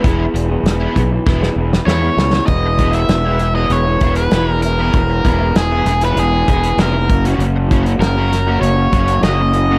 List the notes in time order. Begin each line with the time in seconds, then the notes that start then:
0.03 E1 E3 G#3 B3 E4 G#4, kick, closed hi-hat
0.34 E1, muted overdriven electric guitar stroke, closed hi-hat
0.49 B3 E4 G#4
0.63 E1 E3 B3 E4, snare, closed hi-hat
0.68 G#4
0.80 E3 G#3 B3 E4
0.94 B1 E3 B3 E4 G#4, kick, closed hi-hat
1.11 muted overdriven electric guitar stroke
1.26 E1 E3 G#3 B3 E4, kick, snare
1.41 B3 E4 G#4, snare
1.56 E1 E3 B3 E4 G#4
1.72 muted overdriven electric guitar stroke, snare
1.85 E2 E3 G#3 B3 E4 G#4 C#5, snare
2.01 B3 E4 G#4
2.15 C#2 E3 B3 E4 G#4, snare
2.33 muted overdriven electric guitar stroke, snare
2.46 E1 E3 G#3 B3 E4 D#5, kick, closed hi-hat
2.65 muted overdriven electric guitar stroke
2.79 E3 B3 E4 G#4, kick, closed hi-hat
2.91 G#3 B3 E4 E5, closed hi-hat
3.07 E1 E3 G#3 B3 E4, snare, closed hi-hat
3.23 E3 G#3 B3 E4 G#4
3.39 muted overdriven electric guitar stroke, closed hi-hat
3.54 E3 G#3 B3 E4 G#4 D#5
3.70 E1 C#5, closed hi-hat
3.85 G#3 B3 E4
4.00 E1 E3 G#3 B3 E4 G#4, kick, closed hi-hat
4.15 B4, closed hi-hat
4.31 E1 E3 G#3 B3 E4 G#4, snare, closed hi-hat
4.48 G#3 B3 E4 A#4, muted overdriven electric guitar stroke
4.62 E3 G#3 B3 E4 A#4, closed hi-hat
4.79 E3 G#3 B3 E4 G#4
4.93 E1 E3 G#3 B3 E4, kick, closed hi-hat
5.09 muted overdriven electric guitar stroke
5.25 E1 E3 B3 E4 G#4, kick, closed hi-hat
5.40 G#3 B3 E4
5.55 E3 G#3 B3 E4 G#4, snare, closed hi-hat
5.71 E3 G#3 B3 E4 G#4
5.85 E1, muted overdriven electric guitar stroke, snare, closed hi-hat
6.01 E3 G#3 B3 E4 G#4 B4, closed hi-hat
6.16 E1 G#4, closed hi-hat
6.33 G#3 B3 E4
6.48 E1 E3 G#3 B3 E4 G#4, kick, closed hi-hat
6.63 closed hi-hat
6.77 F1 E3 G#3 B3 G#4 A#4, snare, closed hi-hat
6.82 E4
6.94 B3 E4, muted overdriven electric guitar stroke
6.98 G#3
7.10 F#1 F#3 A#3 C#4 F#4, kick, closed hi-hat
7.25 F#3 A#3 C#4 F#4, closed hi-hat
7.38 F#1 F#3 A#3 C#4, closed hi-hat
7.43 F#4
7.56 muted overdriven electric guitar stroke
7.71 F#3 A#3 C#4 F#4, kick, closed hi-hat
7.85 A#3 C#4 F#4, closed hi-hat
7.99 F#1 F#3 A#3 C#4 F#4 A#4, snare, closed hi-hat
8.16 F#3 A#3 C#4 F#4
8.31 muted overdriven electric guitar stroke, snare, closed hi-hat
8.46 F#3 A#3 C#4 F#4
8.61 F#1 C#5, closed hi-hat
8.76 A#3 C#4 F#4
8.91 F#1 F#3 A#3 C#4 F#4, kick, closed hi-hat
9.08 closed hi-hat
9.21 F#1 F#3 A#3 C#4 F#4 D#5, snare, closed hi-hat
9.38 A#3 C#4 F#4, muted overdriven electric guitar stroke
9.51 F#3 A#3 C#4 F#4, closed hi-hat
9.67 A#3 C#4 F#4
9.72 F#3